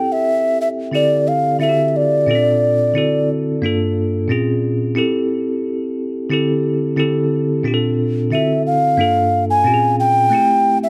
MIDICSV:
0, 0, Header, 1, 3, 480
1, 0, Start_track
1, 0, Tempo, 668896
1, 676, Time_signature, 4, 2, 24, 8
1, 7815, End_track
2, 0, Start_track
2, 0, Title_t, "Ocarina"
2, 0, Program_c, 0, 79
2, 0, Note_on_c, 0, 79, 91
2, 88, Note_on_c, 0, 76, 84
2, 99, Note_off_c, 0, 79, 0
2, 434, Note_off_c, 0, 76, 0
2, 439, Note_on_c, 0, 76, 74
2, 492, Note_off_c, 0, 76, 0
2, 681, Note_on_c, 0, 74, 76
2, 917, Note_on_c, 0, 77, 73
2, 928, Note_off_c, 0, 74, 0
2, 1146, Note_off_c, 0, 77, 0
2, 1151, Note_on_c, 0, 76, 77
2, 1351, Note_off_c, 0, 76, 0
2, 1351, Note_on_c, 0, 76, 48
2, 1410, Note_on_c, 0, 74, 75
2, 1420, Note_off_c, 0, 76, 0
2, 2364, Note_off_c, 0, 74, 0
2, 5973, Note_on_c, 0, 76, 68
2, 6189, Note_off_c, 0, 76, 0
2, 6218, Note_on_c, 0, 77, 75
2, 6780, Note_off_c, 0, 77, 0
2, 6818, Note_on_c, 0, 80, 77
2, 7144, Note_off_c, 0, 80, 0
2, 7173, Note_on_c, 0, 79, 86
2, 7737, Note_off_c, 0, 79, 0
2, 7775, Note_on_c, 0, 76, 77
2, 7815, Note_off_c, 0, 76, 0
2, 7815, End_track
3, 0, Start_track
3, 0, Title_t, "Tine electric piano"
3, 0, Program_c, 1, 4
3, 0, Control_c, 1, 64, 127
3, 0, Note_on_c, 1, 60, 66
3, 0, Note_on_c, 1, 64, 57
3, 0, Note_on_c, 1, 67, 58
3, 0, Note_on_c, 1, 69, 75
3, 476, Note_off_c, 1, 60, 0
3, 481, Note_off_c, 1, 64, 0
3, 484, Note_off_c, 1, 67, 0
3, 513, Note_off_c, 1, 69, 0
3, 656, Note_on_c, 1, 50, 63
3, 666, Note_on_c, 1, 60, 56
3, 671, Note_on_c, 1, 64, 57
3, 678, Note_on_c, 1, 67, 61
3, 685, Note_on_c, 1, 69, 67
3, 687, Control_c, 1, 64, 0
3, 830, Control_c, 1, 64, 127
3, 1044, Note_off_c, 1, 50, 0
3, 1048, Note_off_c, 1, 60, 0
3, 1051, Note_off_c, 1, 64, 0
3, 1055, Note_off_c, 1, 67, 0
3, 1058, Note_off_c, 1, 69, 0
3, 1140, Note_on_c, 1, 50, 61
3, 1146, Note_on_c, 1, 60, 56
3, 1153, Note_on_c, 1, 64, 57
3, 1160, Note_on_c, 1, 66, 43
3, 1171, Note_on_c, 1, 69, 63
3, 1205, Note_off_c, 1, 66, 0
3, 1212, Note_on_c, 1, 67, 54
3, 1625, Note_off_c, 1, 60, 0
3, 1625, Note_on_c, 1, 46, 70
3, 1629, Note_off_c, 1, 50, 0
3, 1633, Note_on_c, 1, 60, 59
3, 1635, Note_off_c, 1, 64, 0
3, 1639, Note_on_c, 1, 61, 46
3, 1644, Note_off_c, 1, 69, 0
3, 1645, Control_c, 1, 64, 0
3, 1647, Note_on_c, 1, 65, 63
3, 1656, Note_on_c, 1, 69, 71
3, 1665, Note_off_c, 1, 67, 0
3, 1685, Note_off_c, 1, 61, 0
3, 1687, Note_on_c, 1, 62, 62
3, 1790, Control_c, 1, 64, 127
3, 2015, Note_off_c, 1, 46, 0
3, 2019, Note_off_c, 1, 60, 0
3, 2026, Note_off_c, 1, 65, 0
3, 2031, Note_off_c, 1, 69, 0
3, 2046, Note_off_c, 1, 62, 0
3, 2107, Note_on_c, 1, 50, 73
3, 2115, Note_on_c, 1, 60, 70
3, 2119, Note_on_c, 1, 64, 70
3, 2128, Control_c, 1, 64, 0
3, 2128, Note_on_c, 1, 66, 69
3, 2137, Note_on_c, 1, 69, 82
3, 2232, Control_c, 1, 64, 127
3, 2496, Note_off_c, 1, 50, 0
3, 2501, Note_off_c, 1, 60, 0
3, 2502, Note_off_c, 1, 64, 0
3, 2507, Note_off_c, 1, 66, 0
3, 2511, Note_off_c, 1, 69, 0
3, 2597, Note_on_c, 1, 43, 76
3, 2598, Note_on_c, 1, 58, 72
3, 2606, Note_on_c, 1, 62, 72
3, 2607, Control_c, 1, 64, 0
3, 2615, Note_on_c, 1, 65, 70
3, 2624, Note_on_c, 1, 69, 79
3, 2747, Control_c, 1, 64, 127
3, 2975, Note_off_c, 1, 43, 0
3, 2975, Note_off_c, 1, 58, 0
3, 2980, Note_off_c, 1, 62, 0
3, 2984, Note_off_c, 1, 65, 0
3, 2988, Note_off_c, 1, 69, 0
3, 3072, Note_on_c, 1, 46, 71
3, 3081, Note_on_c, 1, 60, 67
3, 3086, Note_on_c, 1, 61, 68
3, 3087, Control_c, 1, 64, 0
3, 3093, Note_on_c, 1, 65, 67
3, 3099, Note_on_c, 1, 68, 77
3, 3195, Control_c, 1, 64, 127
3, 3543, Note_off_c, 1, 60, 0
3, 3552, Note_on_c, 1, 60, 81
3, 3555, Note_off_c, 1, 46, 0
3, 3560, Note_on_c, 1, 64, 74
3, 3562, Note_off_c, 1, 61, 0
3, 3566, Note_off_c, 1, 65, 0
3, 3567, Control_c, 1, 64, 0
3, 3569, Note_off_c, 1, 68, 0
3, 3569, Note_on_c, 1, 67, 76
3, 3577, Note_on_c, 1, 69, 81
3, 3700, Control_c, 1, 64, 127
3, 4323, Note_off_c, 1, 60, 0
3, 4327, Note_off_c, 1, 64, 0
3, 4332, Note_off_c, 1, 67, 0
3, 4336, Note_off_c, 1, 69, 0
3, 4518, Note_on_c, 1, 50, 74
3, 4522, Note_on_c, 1, 60, 67
3, 4527, Control_c, 1, 64, 0
3, 4532, Note_on_c, 1, 64, 72
3, 4537, Note_on_c, 1, 67, 69
3, 4545, Note_on_c, 1, 69, 80
3, 4651, Control_c, 1, 64, 127
3, 4896, Note_off_c, 1, 50, 0
3, 4898, Note_off_c, 1, 60, 0
3, 4903, Note_off_c, 1, 64, 0
3, 4905, Note_off_c, 1, 67, 0
3, 4909, Note_off_c, 1, 69, 0
3, 4997, Note_on_c, 1, 50, 76
3, 5003, Note_on_c, 1, 60, 70
3, 5006, Note_on_c, 1, 64, 67
3, 5017, Note_on_c, 1, 67, 67
3, 5022, Note_on_c, 1, 69, 85
3, 5477, Note_off_c, 1, 60, 0
3, 5478, Note_off_c, 1, 50, 0
3, 5478, Note_on_c, 1, 46, 75
3, 5483, Note_off_c, 1, 64, 0
3, 5486, Note_on_c, 1, 60, 68
3, 5487, Control_c, 1, 64, 0
3, 5488, Note_off_c, 1, 67, 0
3, 5491, Note_off_c, 1, 69, 0
3, 5491, Note_on_c, 1, 62, 71
3, 5496, Note_on_c, 1, 65, 77
3, 5508, Note_on_c, 1, 67, 71
3, 5540, Note_off_c, 1, 67, 0
3, 5552, Note_on_c, 1, 69, 89
3, 5635, Control_c, 1, 64, 127
3, 5863, Note_off_c, 1, 46, 0
3, 5866, Note_off_c, 1, 60, 0
3, 5869, Note_off_c, 1, 62, 0
3, 5872, Note_off_c, 1, 65, 0
3, 5900, Note_off_c, 1, 69, 0
3, 5958, Note_on_c, 1, 50, 65
3, 5968, Control_c, 1, 64, 0
3, 5968, Note_on_c, 1, 60, 56
3, 5972, Note_on_c, 1, 64, 60
3, 5980, Note_on_c, 1, 66, 57
3, 5990, Note_on_c, 1, 69, 70
3, 6093, Control_c, 1, 64, 127
3, 6343, Note_off_c, 1, 50, 0
3, 6347, Note_off_c, 1, 60, 0
3, 6350, Note_off_c, 1, 64, 0
3, 6354, Note_off_c, 1, 66, 0
3, 6358, Note_off_c, 1, 69, 0
3, 6438, Note_on_c, 1, 43, 65
3, 6441, Note_on_c, 1, 58, 54
3, 6447, Control_c, 1, 64, 0
3, 6449, Note_on_c, 1, 62, 61
3, 6459, Note_on_c, 1, 65, 57
3, 6465, Note_on_c, 1, 69, 72
3, 6577, Control_c, 1, 64, 127
3, 6816, Note_off_c, 1, 43, 0
3, 6817, Note_off_c, 1, 58, 0
3, 6821, Note_off_c, 1, 62, 0
3, 6826, Note_off_c, 1, 65, 0
3, 6829, Note_off_c, 1, 69, 0
3, 6917, Note_on_c, 1, 46, 60
3, 6921, Note_on_c, 1, 60, 60
3, 6929, Control_c, 1, 64, 0
3, 6929, Note_on_c, 1, 61, 57
3, 6938, Note_on_c, 1, 65, 56
3, 6939, Note_on_c, 1, 67, 52
3, 6976, Note_off_c, 1, 67, 0
3, 6988, Note_on_c, 1, 68, 64
3, 7074, Control_c, 1, 64, 127
3, 7391, Note_on_c, 1, 57, 66
3, 7394, Note_off_c, 1, 60, 0
3, 7398, Note_off_c, 1, 46, 0
3, 7402, Note_on_c, 1, 60, 62
3, 7404, Note_off_c, 1, 61, 0
3, 7408, Note_off_c, 1, 65, 0
3, 7408, Control_c, 1, 64, 0
3, 7412, Note_on_c, 1, 64, 63
3, 7423, Note_on_c, 1, 67, 69
3, 7433, Note_off_c, 1, 68, 0
3, 7533, Control_c, 1, 64, 127
3, 7815, Note_off_c, 1, 57, 0
3, 7815, Note_off_c, 1, 60, 0
3, 7815, Note_off_c, 1, 64, 0
3, 7815, Note_off_c, 1, 67, 0
3, 7815, End_track
0, 0, End_of_file